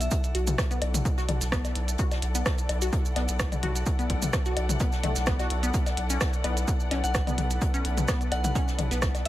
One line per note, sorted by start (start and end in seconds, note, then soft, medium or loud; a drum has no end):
0.00 9.28 E4 medium
0.00 9.28 A4 medium
0.00 9.28 D5 medium
0.00 0.08 E5 medium
0.00 9.28 F#5 medium
0.00 closed hi-hat medium
0.00 maracas medium
0.11 kick loud
0.11 closed hi-hat medium
0.11 maracas medium
0.24 closed hi-hat soft
0.24 maracas soft
0.35 0.55 B1 loud
0.35 0.41 F#4 medium
0.35 closed hi-hat loud
0.35 closed hi-hat medium
0.47 closed hi-hat medium
0.47 mid tom loud
0.47 maracas medium
0.58 kick loud
0.58 cross-stick medium
0.58 snare loud
0.58 closed hi-hat medium
0.58 maracas medium
0.71 0.76 B3 medium
0.71 closed hi-hat soft
0.71 maracas soft
0.82 1.02 B1 loud
0.82 closed hi-hat medium
0.82 closed hi-hat loud
0.82 low woodblock medium
0.94 closed hi-hat medium
0.94 mid tom loud
0.94 maracas medium
1.05 kick loud
1.05 closed hi-hat medium
1.05 maracas medium
1.18 1.23 F#4 medium
1.18 snare soft
1.18 maracas soft
1.28 1.39 B1 loud
1.28 closed hi-hat medium
1.28 closed hi-hat loud
1.28 mid tom medium
1.28 low woodblock medium
1.41 1.61 B1 medium
1.41 snare medium
1.41 closed hi-hat medium
1.41 maracas medium
1.52 1.58 B3 medium
1.52 kick loud
1.52 cross-stick loud
1.52 snare loud
1.52 closed hi-hat medium
1.52 maracas medium
1.65 snare soft
1.65 closed hi-hat soft
1.65 low woodblock medium
1.65 maracas soft
1.75 1.96 B1 medium
1.75 closed hi-hat medium
1.75 closed hi-hat loud
1.88 closed hi-hat medium
1.88 maracas medium
1.98 2.05 F#4 medium
1.98 kick loud
1.98 closed hi-hat medium
1.98 maracas medium
2.11 snare medium
2.11 closed hi-hat soft
2.11 low woodblock medium
2.11 maracas soft
2.22 2.43 B1 loud
2.22 closed hi-hat medium
2.22 closed hi-hat loud
2.35 2.40 B3 medium
2.35 closed hi-hat medium
2.35 maracas medium
2.46 kick loud
2.46 cross-stick medium
2.46 snare loud
2.46 closed hi-hat medium
2.46 maracas medium
2.58 closed hi-hat soft
2.58 maracas soft
2.69 2.89 B1 loud
2.69 closed hi-hat loud
2.69 closed hi-hat medium
2.69 low woodblock medium
2.82 2.87 F#4 medium
2.82 closed hi-hat medium
2.82 maracas medium
2.93 kick loud
2.93 closed hi-hat loud
2.93 maracas medium
3.05 maracas soft
3.16 3.27 B1 loud
3.16 3.22 B3 medium
3.16 snare medium
3.16 closed hi-hat medium
3.16 closed hi-hat loud
3.16 low woodblock medium
3.28 3.48 B1 medium
3.28 closed hi-hat medium
3.28 closed hi-hat soft
3.28 maracas medium
3.39 kick loud
3.39 cross-stick loud
3.39 snare loud
3.39 closed hi-hat medium
3.39 maracas medium
3.52 closed hi-hat soft
3.52 mid tom medium
3.52 low woodblock medium
3.52 maracas soft
3.62 3.83 B1 medium
3.62 3.69 F#4 medium
3.62 closed hi-hat medium
3.62 closed hi-hat loud
3.62 mid tom medium
3.76 closed hi-hat medium
3.76 maracas medium
3.86 kick loud
3.86 closed hi-hat medium
3.86 maracas medium
3.99 4.04 B3 medium
3.99 closed hi-hat soft
3.99 maracas soft
4.09 4.30 B1 loud
4.09 kick medium
4.09 closed hi-hat medium
4.09 closed hi-hat loud
4.22 closed hi-hat soft
4.22 mid tom medium
4.22 maracas medium
4.33 kick loud
4.33 cross-stick medium
4.33 snare loud
4.33 closed hi-hat medium
4.33 maracas medium
4.45 4.51 F#4 medium
4.45 closed hi-hat soft
4.45 maracas soft
4.56 4.77 B1 loud
4.56 closed hi-hat medium
4.56 closed hi-hat loud
4.56 low woodblock medium
4.69 closed hi-hat medium
4.69 mid tom medium
4.69 maracas medium
4.80 4.86 B3 medium
4.80 kick loud
4.80 closed hi-hat medium
4.80 maracas medium
4.92 snare medium
4.92 maracas soft
5.04 5.14 B1 loud
5.04 5.09 A3 medium
5.04 closed hi-hat loud
5.04 closed hi-hat medium
5.04 mid tom medium
5.04 low woodblock medium
5.16 5.36 B1 medium
5.16 snare medium
5.16 closed hi-hat soft
5.16 maracas medium
5.26 5.36 B3 medium
5.26 kick loud
5.26 cross-stick medium
5.26 snare loud
5.26 closed hi-hat medium
5.26 maracas medium
5.39 5.45 F#4 loud
5.39 snare soft
5.39 closed hi-hat soft
5.39 low woodblock medium
5.39 maracas soft
5.50 5.71 B1 medium
5.50 closed hi-hat loud
5.50 closed hi-hat medium
5.63 5.66 B3 medium
5.63 closed hi-hat medium
5.63 maracas medium
5.74 9.28 B3 medium
5.74 9.28 B4 medium
5.74 kick loud
5.74 closed hi-hat loud
5.74 maracas medium
5.86 snare medium
5.86 closed hi-hat soft
5.86 low woodblock medium
5.86 maracas soft
5.97 6.18 B1 loud
5.97 closed hi-hat loud
5.97 closed hi-hat medium
6.10 6.13 C#4 medium
6.10 closed hi-hat medium
6.10 maracas medium
6.21 kick loud
6.21 cross-stick medium
6.21 snare loud
6.21 closed hi-hat medium
6.21 maracas medium
6.33 closed hi-hat soft
6.33 maracas soft
6.44 6.64 B1 loud
6.44 6.50 B3 medium
6.44 closed hi-hat medium
6.44 low woodblock medium
6.57 closed hi-hat soft
6.57 maracas medium
6.67 kick loud
6.67 closed hi-hat medium
6.67 maracas medium
6.80 maracas soft
6.91 7.02 B1 loud
6.91 6.95 C#4 medium
6.91 snare medium
6.91 closed hi-hat medium
6.91 low woodblock medium
7.04 7.23 B1 medium
7.04 7.22 F#5 medium
7.04 closed hi-hat soft
7.04 maracas medium
7.14 kick loud
7.14 cross-stick medium
7.14 snare loud
7.14 closed hi-hat medium
7.14 maracas medium
7.27 7.32 B3 medium
7.27 closed hi-hat soft
7.27 mid tom medium
7.27 low woodblock medium
7.27 maracas soft
7.38 7.58 B1 medium
7.38 closed hi-hat medium
7.38 mid tom medium
7.50 closed hi-hat medium
7.50 maracas medium
7.61 kick loud
7.61 closed hi-hat loud
7.61 maracas medium
7.74 7.77 C#4 medium
7.74 closed hi-hat soft
7.74 maracas soft
7.85 8.05 B1 loud
7.85 closed hi-hat medium
7.97 closed hi-hat medium
7.97 mid tom medium
7.97 maracas medium
8.08 8.14 B3 medium
8.08 kick loud
8.08 cross-stick medium
8.08 snare loud
8.08 closed hi-hat medium
8.08 maracas medium
8.21 closed hi-hat soft
8.21 maracas soft
8.32 8.52 B1 loud
8.32 8.40 F#5 medium
8.32 closed hi-hat medium
8.32 low woodblock medium
8.44 8.51 F#5 medium
8.44 closed hi-hat medium
8.44 mid tom medium
8.44 maracas medium
8.55 8.59 C#4 medium
8.55 kick loud
8.55 closed hi-hat medium
8.55 maracas medium
8.68 snare medium
8.68 maracas soft
8.79 8.89 B1 loud
8.79 closed hi-hat medium
8.79 mid tom medium
8.79 low woodblock medium
8.91 9.11 B1 medium
8.91 8.96 B3 medium
8.91 snare medium
8.91 closed hi-hat medium
8.91 maracas medium
9.02 kick loud
9.02 cross-stick medium
9.02 snare loud
9.02 closed hi-hat medium
9.02 maracas medium
9.14 snare soft
9.14 closed hi-hat soft
9.14 low woodblock medium
9.14 maracas soft